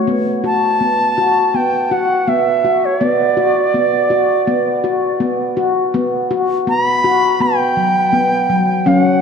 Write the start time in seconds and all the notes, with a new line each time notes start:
0.08 B3
0.44 F#4 A5
0.81 B3
1.18 F#4
1.54 B3 G5
1.91 F#4 F#5
2.28 B3 E5
2.65 F#4
2.85 C#5
3.01 B3 D5
3.37 F#4
3.74 B3
4.10 F#4
4.47 B3
4.84 F#4
5.20 B3
5.57 F#4
5.94 B3
6.31 F#4
6.67 B3 A#5
6.83 B5
7.04 F#4
7.40 B3 G5
7.77 F#3
8.13 B3
8.50 F#3
8.86 F#3 C#4 F5
8.99 F#5